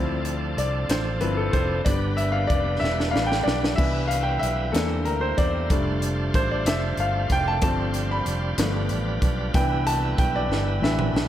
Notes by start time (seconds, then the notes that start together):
Already playing: D2 F3 C4 D4 E4 A4
0.25 closed hi-hat
0.57 C2 D5, closed hi-hat
0.89 A1 C5, snare, closed hi-hat
1.21 G1 F3 C4 E4 B4, closed hi-hat
1.37 A4
1.53 F1 C5, kick, closed hi-hat
1.85 G1 G3 B3 D4 B4 D5, kick, closed hi-hat
2.17 E5, closed hi-hat
2.32 F5
2.47 F1 D5, kick, closed hi-hat
2.80 E1 E5
2.84 snare
3.00 snare
3.11 A1 G3 B3 D4 F5
3.16 snare
3.27 G5
3.32 snare
3.43 B1 D5
3.48 snare
3.64 snare
3.76 C2 E3 G3 B3 D4 E4 B4 E5, kick, crash
4.08 F5, closed hi-hat
4.23 G5
4.39 B1 E5, closed hi-hat
4.72 E2 E3 G3 A#3 C4 D4 D#4 A4, snare, closed hi-hat
4.82 E4
5.05 D2 A#4, closed hi-hat
5.21 C5
5.38 E2 D5, kick, closed hi-hat
5.70 F1 G3 A3 D4 F4 C5, kick, closed hi-hat
6.02 closed hi-hat
6.34 A1 C5, kick, closed hi-hat
6.51 D5
6.65 F1 E5, snare, closed hi-hat
6.97 G1 F5, closed hi-hat
7.30 F1 G5, kick, closed hi-hat
7.48 A5
7.62 G1 F3 G3 A3 C4 D4 F4 C5 A5, kick, closed hi-hat
7.94 closed hi-hat
8.11 B5
8.26 F1, closed hi-hat
8.58 G1 F3 G3 A3 B3 D4 F4 B4, snare, closed hi-hat
8.89 A1, closed hi-hat
9.22 B1, kick, closed hi-hat
9.53 C2 E3 G3 B3 D4 E4 B4 G5, kick, closed hi-hat
9.87 A5, closed hi-hat
10.18 B1 G5, kick, closed hi-hat
10.36 D5
10.49 G1, snare
10.81 A1 E3 B3 D4 E5, snare
10.99 mid tom
11.13 B1, snare